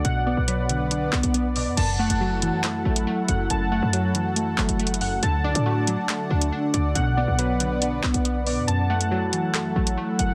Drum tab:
CC |------------------------------------------------|x-----------------------------------------------|------------------------------------------------|------------------------------------------------|
HH |x-----------x-----x-----x--------x--x-----o-----|x--------x--------x-----x--------x--------x-----|x-----------x-----x-----x--------x--x-x-x-o-----|x--------x--------x-----x--------x--------x-----|
CP |------------------------------x-----------------|------------------------x-----------------------|------------------------------x-----------------|------------------------x-----------------------|

CC |------------------------------------------------|------------------------------------------------|
HH |x-----------x-----x-----x--------x--x-----o-----|x--------x--------x-----x--------x--------x-----|
CP |------------------------------x-----------------|------------------------x-----------------------|